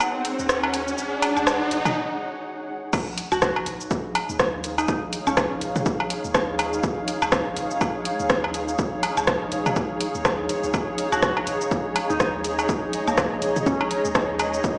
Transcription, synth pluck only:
3.32 3.38 F#4 medium
3.42 3.51 F#4 medium
4.78 4.85 D#4 medium
4.88 4.97 D#4 medium
5.27 5.61 C#4 medium
11.12 11.19 F#4 medium
11.22 11.32 F#4 medium
12.10 12.16 D#4 medium
12.20 12.29 D#4 medium
13.07 13.14 A#3 medium
13.18 13.27 A#3 medium
13.66 14.15 C#4 medium

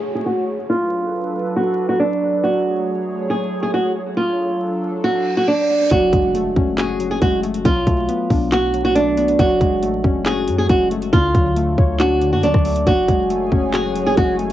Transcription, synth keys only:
5.91 6.99 F#3 medium
6.13 7.20 G#3 medium
6.34 7.42 A3 medium
6.56 7.65 C#4 medium
6.78 7.65 F#4 loud
7.00 7.64 F#3 medium
7.22 7.65 G#3 medium
7.43 7.65 A3 medium
7.65 8.73 F#3 loud
7.87 8.94 A3 medium
8.08 9.16 B3 medium
8.31 9.39 D4 medium
8.52 9.39 F#4 loud
8.74 9.38 F#3 medium
8.95 9.39 A3 medium
9.17 9.39 B3 medium
9.39 10.46 F#3 loud
9.61 10.68 G#3 medium
9.83 10.90 A3 medium
10.04 11.13 C#4 medium
10.26 11.13 F#4 loud
10.48 11.13 F#3 medium
10.69 11.13 G#3 medium
10.91 11.13 A3 medium
11.13 12.20 D3 medium
11.35 12.42 F#3 medium
11.56 12.64 A3 medium
11.78 12.87 C#5 medium
12.00 12.87 D4 loud
12.22 12.87 D3 medium
12.43 12.86 F#3 loud
12.65 12.87 A3 medium
12.87 13.95 F#3 medium
13.08 14.16 G#3 medium
13.30 14.38 A3 medium
13.52 14.53 C#4 medium
13.74 14.53 F#4 loud
13.96 14.53 F#3 medium
14.17 14.53 G#3 medium
14.39 14.53 A3 medium

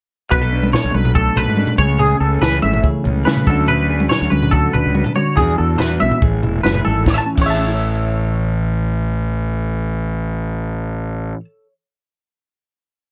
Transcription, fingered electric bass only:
0.32 0.75 B1 medium
0.84 0.93 B1 medium
0.94 1.29 B1 medium
1.37 1.45 B1 medium
1.48 1.65 G#2 medium
1.79 2.13 C#2 medium
2.20 2.38 C#2 medium
2.42 2.59 C#2 medium
2.64 2.81 G#1 medium
3.06 3.23 C#2 medium
3.27 3.44 C#3 medium
3.48 4.08 D2 medium
4.22 4.30 D2 medium
4.32 4.67 D2 medium
4.74 4.83 D2 medium
4.86 5.03 C#2 medium
5.38 5.55 E2 medium
5.60 5.77 E2 medium
5.80 5.98 E2 medium
6.02 6.10 B1 medium
6.23 6.40 A1 medium
6.44 6.63 E1 medium
6.65 6.84 F#1 medium
6.86 7.05 G#1 medium
7.06 7.18 A1 medium
7.38 11.32 A1 medium

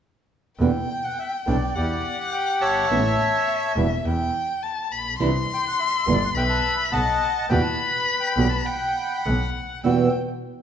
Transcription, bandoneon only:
0.90 1.04 G5 medium
1.04 1.19 F#5 medium
1.19 1.32 E5 medium
1.48 1.74 D5 medium
1.76 2.87 G4 medium
1.76 2.17 D5 medium
2.21 2.33 F#5 medium
2.33 2.60 G5 medium
2.61 3.72 C#5 medium
2.61 3.72 E5 medium
2.61 3.72 A5 medium
5.54 5.65 G5 medium
5.67 5.80 F#5 medium
5.80 6.06 E5 medium
6.10 6.23 D5 medium
6.24 6.30 F#5 medium
6.37 6.89 B4 medium
6.37 6.89 E5 medium
6.37 6.43 G5 medium
6.49 6.76 A5 medium
6.77 6.91 B5 medium
6.91 7.46 D#5 medium
6.91 7.46 F#5 medium
6.91 7.51 A5 loud
7.49 8.61 B4 medium
7.49 7.63 G5 medium
7.63 7.90 A5 medium
7.92 8.19 B5 medium
8.20 8.48 G5 medium
8.49 8.64 A5 medium
8.65 9.50 F#5 medium
8.65 9.20 G5 medium
8.65 9.50 B5 medium
9.84 10.11 E6 medium

